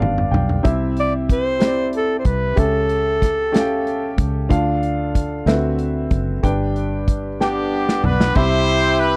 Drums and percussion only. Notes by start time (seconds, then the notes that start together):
0.02 mid tom
0.18 floor tom
0.34 floor tom
0.49 floor tom
0.65 kick, closed hi-hat
0.97 closed hi-hat
1.29 kick, closed hi-hat
1.60 snare, closed hi-hat
1.93 closed hi-hat
2.25 kick, closed hi-hat
2.57 kick, closed hi-hat
2.89 closed hi-hat
3.22 kick, snare, closed hi-hat
3.54 snare, closed hi-hat
3.87 closed hi-hat
4.18 kick, closed hi-hat
4.51 kick, closed hi-hat
4.83 closed hi-hat
5.15 kick, closed hi-hat
5.47 snare, closed hi-hat
5.79 closed hi-hat
6.11 kick, closed hi-hat
6.44 kick, closed hi-hat
6.76 closed hi-hat
7.08 kick, closed hi-hat
7.41 snare
7.89 snare
8.04 floor tom
8.21 snare
8.35 kick, crash
8.68 ride
9.01 ride